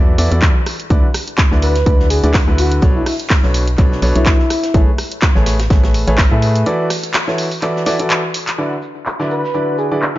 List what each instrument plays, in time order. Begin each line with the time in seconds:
Already playing: fm bass E2, grand piano E3 E4 F#4 A4 D5
0.18 fm bass E2, grand piano E3 E4 F#4 A4 D5, open hi-hat
0.32 fm bass E2, grand piano E3 E4 F#4 A4 D5, closed hi-hat
0.42 kick, clap, closed hi-hat
0.66 cross-stick, open hi-hat
0.80 closed hi-hat
0.90 fm bass D2, grand piano D3 E4 F#4 B4 D5, kick, closed hi-hat, shaker
1.14 cross-stick, open hi-hat, shaker
1.28 closed hi-hat
1.38 kick, snare, clap, closed hi-hat, shaker
1.52 fm bass D2, grand piano D3 E4 F#4 B4 D5, snare
1.62 soft synth lead B4, open hi-hat, shaker
1.75 snare, closed hi-hat
1.86 fm bass D2, grand piano D3 E4 F#4 B4 D5, kick, closed hi-hat, shaker
2.00 snare
2.10 soft synth lead G#4, open hi-hat, shaker
2.24 fm bass D2, grand piano D3 E4 F#4 B4 D5, soft synth lead G#4, closed hi-hat
2.34 kick, snare, clap, open hi-hat, shaker
2.48 fm bass D2, grand piano D3 E4 F#4 B4 E5
2.58 soft synth lead F#4, open hi-hat
2.72 closed hi-hat
2.82 fm bass B1, grand piano B2 D4 A4 B4 C#5, kick, closed hi-hat, shaker
2.96 soft synth lead E4
3.06 soft synth lead E4, cross-stick, open hi-hat
3.20 closed hi-hat
3.30 kick, snare, clap, closed hi-hat, shaker
3.43 fm bass B1, grand piano B2 D4 A4 B4 C#5, snare
3.54 open hi-hat, shaker
3.67 closed hi-hat
3.78 fm bass B1, grand piano B2 D4 A4 B4 C#5, kick, clap, closed hi-hat, shaker
3.92 snare
4.02 fm bass B1, grand piano B2 D4 A4 B4 C#5, open hi-hat, shaker
4.16 fm bass B1, grand piano B2 D4 A4 B4 C#5, soft synth lead E4, closed hi-hat
4.26 soft synth lead E4, kick, snare, clap, closed hi-hat, shaker
4.40 snare
4.50 cross-stick, open hi-hat, shaker
4.63 snare, closed hi-hat
4.74 fm bass A1, grand piano A3 G#4 A4 B4 C#5, kick, closed hi-hat, shaker
4.98 cross-stick, open hi-hat, shaker
5.12 closed hi-hat
5.22 kick, snare, clap, closed hi-hat, shaker
5.35 fm bass A1, grand piano A3 G#4 A4 B4 C#5, snare
5.46 snare, open hi-hat, shaker
5.60 snare, closed hi-hat, shaker
5.70 fm bass A1, grand piano A3 G#4 A4 B4 C#5, kick, snare, closed hi-hat, shaker
5.84 snare, shaker
5.94 open hi-hat, shaker
6.07 fm bass A1, grand piano A3 G#4 A4 B4 C#5, closed hi-hat
6.18 kick, snare, clap, open hi-hat, shaker
6.31 fm bass A2, grand piano A3 G#4 A4 B4 E5
6.42 open hi-hat, shaker
6.55 closed hi-hat
6.66 grand piano E3 E4 F#4 A4 D5, closed hi-hat, shaker
6.90 cross-stick, open hi-hat
7.04 closed hi-hat
7.14 snare, clap, closed hi-hat, shaker
7.28 grand piano E3 E4 F#4 A4 C#5, snare
7.38 open hi-hat, shaker
7.51 open hi-hat
7.62 grand piano E3 E4 F#4 A4 D5, clap, closed hi-hat, shaker
7.76 snare
7.86 grand piano E3 E4 F#4 A4 D5, snare, open hi-hat, shaker
7.99 grand piano E3 E4 F#4 A4 D5, closed hi-hat
8.10 clap, closed hi-hat, shaker
8.34 open hi-hat
8.47 clap, closed hi-hat, shaker
8.58 grand piano D3 E4 F#4 B4 D5, shaker
8.72 tambourine
8.82 tambourine, shaker
8.96 tambourine
9.06 clap, tambourine, shaker
9.20 grand piano D3 E4 F#4 B4 D5, snare
9.30 soft synth lead B4, tambourine, shaker
9.44 snare, tambourine
9.54 grand piano D3 E4 F#4 B4 D5, tambourine, shaker
9.68 tambourine
9.78 soft synth lead G#4, tambourine, shaker
9.91 grand piano D3 E4 F#4 B4 D5, soft synth lead G#4, tambourine
10.02 clap, tambourine, shaker